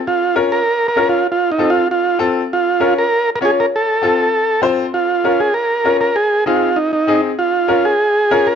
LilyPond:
<<
  \new Staff \with { instrumentName = "Transistor combo organ" } { \time 4/4 \key bes \minor \tempo 4 = 197 f'4 r8 bes'8~ \tuplet 3/2 { bes'4 bes'8~ bes'8 f'4 } | \tuplet 3/2 { f'4 ees'8~ ees'8 f'4 } f'4 r4 | f'4. bes'8~ \tuplet 3/2 { bes'4 bes'8 } aes'8 bes'8 | a'2. r4 |
f'4. aes'8 bes'4. bes'8 | aes'4 f'4 ees'8 ees'4 r8 | f'4. aes'2 bes'8 | }
  \new Staff \with { instrumentName = "Upright piano" } { \time 4/4 \key bes \minor r4 <des' f' bes'>8 r4. <des' f' bes'>8 r8 | r4 <c' f' a'>8 r4. <c' f' a'>8 r8 | r4 <des' f' bes'>8 r4. <des' f' des''>8 r8 | r4 <c' f' a'>8 r4. <c' f' c''>8 r8 |
r4 <des' f' bes'>8 r4. <des' f' bes'>8 r8 | r4 <c' ees' aes'>8 r4. <c' ees' aes'>8 r8 | r4 <des' f' bes'>8 r4. <des' f' bes'>8 r8 | }
>>